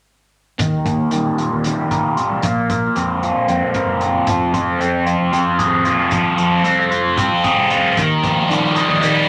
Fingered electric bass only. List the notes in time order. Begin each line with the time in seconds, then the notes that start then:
0.59 D#2
1.12 D#3
1.53 D#2
1.65 D#3
2.17 G2
2.30 C2
2.43 A#1
2.96 F2
3.35 A#1
3.48 F2
3.62 A#2
3.85 F#1
4.27 F1
4.78 F2
5.18 F1
5.33 F2
5.87 A#1
5.99 F1
6.12 F2
6.65 C2
7.06 F1
7.17 C2
7.32 F2
7.57 C2
7.98 D#2
8.49 D#3
8.89 D#2
9.03 D#3